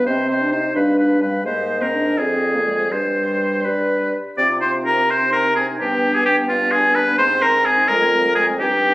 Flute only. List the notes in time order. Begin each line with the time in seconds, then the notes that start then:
0.07 D#5
0.30 D#5
0.53 D#5
0.77 F5
0.98 F5
1.22 F5
1.45 D#5
2.18 D5
2.91 D5
3.65 D5
4.38 D6
4.62 C6
4.86 A#5
5.10 C6
5.34 A#5
5.58 G#5
5.81 G5
6.16 G#5
6.26 G5
6.50 F5
6.73 G#5
6.97 B5
7.19 C6
7.43 A#5
7.66 G#5
7.88 A#5
8.36 G#5
8.61 G5